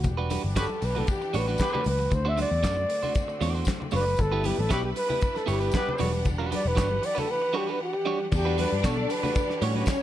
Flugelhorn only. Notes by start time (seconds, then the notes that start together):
Already playing: F#4
0.59 A4
0.85 B4
0.98 A4
1.11 G4
1.37 B4
1.88 B4
2.14 C5
2.28 E5
2.41 D5
3.95 B4
4.21 A4
4.46 G4
4.60 A4
4.72 G4
4.85 G4
4.97 B4
5.37 A4
5.49 G4
5.76 B4
6.54 D5
6.68 B4
7.05 D5
7.19 A4
7.31 B4
7.57 G4
7.70 B4
7.83 G4
8.36 G4
8.60 B4
8.79 B4
8.85 A4
9.11 B4